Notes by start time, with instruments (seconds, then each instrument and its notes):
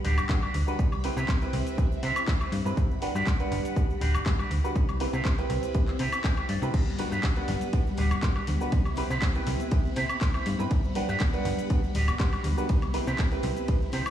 Already playing: string machine G3 F#5 B5
0.04 fm bass D1, clean electric guitar D4 F#4 G4 B4, open hi-hat
0.18 fm bass G1, closed hi-hat, high woodblock, shaker
0.29 fm bass G2, grand piano D4 F#4 G4 B4, kick, clap, closed hi-hat, shaker
0.42 clean electric guitar D4 F#4 G4 B4, high woodblock, shaker
0.54 fm bass D2, open hi-hat
0.67 grand piano D4 F#4 G4 B4, muted clean electric guitar stroke, shaker
0.78 fm bass C2, string machine C4 E4, kick, closed hi-hat, shaker
0.92 high woodblock, shaker
1.04 grand piano C4 E4 G4 B4, open hi-hat
1.16 fm bass C3, clean electric guitar C4 E4 G4 B4, shaker
1.29 kick, clap, closed hi-hat, shaker
1.41 grand piano C4 E4 G4 B4, muted clean electric guitar stroke, closed hi-hat, shaker
1.53 fm bass C2, muted clean electric guitar stroke, open hi-hat
1.67 closed hi-hat, shaker
1.78 grand piano C4 E4 G4 B4, kick, closed hi-hat, shaker
1.92 shaker
2.02 fm bass C3, clean electric guitar C4 E4 G4 B4, open hi-hat
2.16 closed hi-hat, high woodblock, shaker
2.27 grand piano C4 E4 G4 B4, kick, clap, open hi-hat, shaker
2.40 clean electric guitar C4 E4 G4 B4, high woodblock, shaker
2.52 fm bass G2, open hi-hat
2.65 fm bass G2, grand piano C4 E4 G4 B4, muted clean electric guitar stroke, shaker
2.77 fm bass G1, string machine G3 F#5 B5, kick, closed hi-hat, shaker
2.91 shaker
3.01 grand piano D4 F#4 G4 B4, open hi-hat
3.15 fm bass G2, clean electric guitar D4 F#4 G4 B4, shaker
3.27 kick, clap, closed hi-hat, shaker
3.39 grand piano G3 D4 B4 F#5, muted clean electric guitar stroke, closed hi-hat, shaker
3.51 fm bass G1, muted clean electric guitar stroke, open hi-hat
3.65 closed hi-hat, shaker
3.76 fm bass G1, grand piano D4 F#4 G4 B4, kick, closed hi-hat, shaker
3.90 shaker
4.01 fm bass D1, clean electric guitar D4 F#4 G4 B4, open hi-hat
4.14 fm bass G1, closed hi-hat, high woodblock, shaker
4.26 fm bass G2, grand piano D4 F#4 G4 B4, kick, clap, closed hi-hat, shaker
4.38 clean electric guitar D4 F#4 G4 B4, high woodblock, shaker
4.51 fm bass D2, open hi-hat
4.64 grand piano D4 F#4 G4 B4, muted clean electric guitar stroke, shaker
4.75 fm bass C2, string machine C4 E4 B5, kick, closed hi-hat, shaker
4.89 closed hi-hat, high woodblock, shaker
5.00 grand piano C4 E4 G4 B4, open hi-hat
5.13 fm bass C3, clean electric guitar C4 E4 G4 B4, closed hi-hat, shaker
5.25 kick, clap, closed hi-hat, shaker
5.38 grand piano C4 E4 G4 B4, muted clean electric guitar stroke, closed hi-hat, shaker
5.50 fm bass C2, muted clean electric guitar stroke, open hi-hat
5.63 closed hi-hat, shaker
5.74 grand piano C4 E4 G4 B4, kick, closed hi-hat, shaker
5.88 clap, closed hi-hat, shaker
5.99 fm bass C3, clean electric guitar C4 E4 G4 B4, open hi-hat
6.13 high woodblock, shaker
6.24 grand piano C4 E4 G4 B4, clean electric guitar G5, kick, clap, open hi-hat, shaker
6.37 clean electric guitar C4 E4 G4 B4, closed hi-hat, high woodblock, shaker
6.49 fm bass G2, clean electric guitar D5, open hi-hat
6.62 fm bass C3, grand piano C4 E4 G4 B4, muted clean electric guitar stroke, shaker
6.74 fm bass G1, string machine G3 F#5, kick, closed hi-hat, crash, ride, tambourine, shaker
6.87 tambourine, high conga, shaker
6.98 grand piano D4 F#4 G4 B4, open hi-hat, tambourine, low conga
7.11 fm bass G2, clean electric guitar D4 F#4 G4 B4, tambourine, shaker
7.23 kick, clap, closed hi-hat, ride, tambourine, high conga, shaker
7.36 grand piano G3 D4 B4 F#5, muted clean electric guitar stroke, closed hi-hat, tambourine, shaker
7.48 fm bass G1, muted clean electric guitar stroke, open hi-hat, tambourine, low conga
7.61 closed hi-hat, tambourine, high conga, shaker
7.73 fm bass G1, grand piano D4 F#4 G4 B4, kick, closed hi-hat, ride, tambourine, shaker
7.86 tambourine, shaker
7.97 fm bass D1, clean electric guitar D4 F#4 G4 B4, open hi-hat, tambourine
8.11 fm bass G1, closed hi-hat, tambourine, high conga, high woodblock, shaker
8.22 fm bass G2, grand piano D4 F#4 G4 B4, kick, clap, closed hi-hat, ride, tambourine, shaker
8.36 clean electric guitar D4 F#4 G4 B4, tambourine, high woodblock, shaker
8.47 fm bass D2, open hi-hat, tambourine, high conga, low conga
8.60 grand piano D4 F#4 G4 B4, muted clean electric guitar stroke, tambourine, shaker
8.72 fm bass C2, string machine C4 E4, kick, closed hi-hat, ride, tambourine, shaker
8.84 tambourine, high conga, high woodblock, shaker
8.96 grand piano C4 E4 G4 B4, open hi-hat, tambourine, low conga
9.10 fm bass C3, clean electric guitar C4 E4 G4 B4, tambourine, shaker
9.22 kick, clap, closed hi-hat, ride, tambourine, high conga, shaker
9.35 grand piano C4 E4 G4 B4, muted clean electric guitar stroke, closed hi-hat, tambourine, shaker
9.46 fm bass C2, muted clean electric guitar stroke, open hi-hat, tambourine, low conga
9.59 closed hi-hat, tambourine, high conga, shaker
9.71 grand piano C4 E4 G4 B4, kick, closed hi-hat, ride, tambourine, shaker
9.84 tambourine, shaker
9.96 fm bass C3, clean electric guitar C4 E4 G4 B4, open hi-hat, tambourine
10.09 closed hi-hat, tambourine, high conga, high woodblock, shaker
10.21 grand piano C4 E4 G4 B4, kick, clap, open hi-hat, ride, shaker
10.34 clean electric guitar C4 E4 G4 B4, tambourine, high woodblock, shaker
10.46 fm bass G2, open hi-hat, tambourine, high conga
10.59 fm bass G2, grand piano C4 E4 G4 B4, muted clean electric guitar stroke, tambourine, shaker
10.71 fm bass G1, string machine G3 F#5, kick, closed hi-hat, ride, tambourine, shaker
10.83 tambourine, high conga, shaker
10.95 grand piano D4 F#4 G4 B4, open hi-hat, tambourine, low conga
11.09 fm bass G2, clean electric guitar D4 F#4 G4 B4, tambourine, shaker
11.20 kick, clap, closed hi-hat, ride, tambourine, high conga, shaker
11.33 grand piano G3 D4 B4 F#5, muted clean electric guitar stroke, closed hi-hat, tambourine, shaker
11.45 fm bass G1, muted clean electric guitar stroke, open hi-hat, tambourine, low conga
11.59 closed hi-hat, tambourine, high conga, shaker
11.70 fm bass G1, grand piano D4 F#4 G4 B4, kick, closed hi-hat, ride, tambourine, shaker
11.83 tambourine, shaker
11.94 fm bass D1, clean electric guitar D4 F#4 G4 B4, open hi-hat, tambourine
12.07 fm bass G1, closed hi-hat, tambourine, high conga, high woodblock, shaker
12.19 fm bass G2, grand piano D4 F#4 G4 B4, kick, clap, closed hi-hat, ride, tambourine, shaker
12.33 clean electric guitar D4 F#4 G4 B4, tambourine, high woodblock, shaker
12.43 fm bass D2, open hi-hat, tambourine, high conga, low conga
12.56 grand piano D4 F#4 G4 B4, muted clean electric guitar stroke, tambourine, shaker
12.69 fm bass C2, string machine C4 E4, kick, closed hi-hat, ride, tambourine, shaker
12.82 closed hi-hat, tambourine, high conga, high woodblock, shaker
12.93 grand piano C4 E4 G4 B4, open hi-hat, tambourine, low conga
13.06 fm bass C3, clean electric guitar C4 E4 G4 B4, tambourine, shaker
13.18 kick, clap, closed hi-hat, ride, tambourine, high conga, shaker
13.31 grand piano C4 E4 G4 B4, muted clean electric guitar stroke, closed hi-hat, tambourine, shaker
13.43 fm bass C2, muted clean electric guitar stroke, open hi-hat, tambourine, low conga
13.56 closed hi-hat, tambourine, high conga, shaker
13.68 grand piano C4 E4 G4 B4, muted clean electric guitar stroke, kick, closed hi-hat, ride, tambourine, shaker
13.81 tambourine, shaker
13.92 fm bass C3, clean electric guitar C4 E4 G4 B4, open hi-hat, tambourine
14.06 closed hi-hat, tambourine, high conga, high woodblock, shaker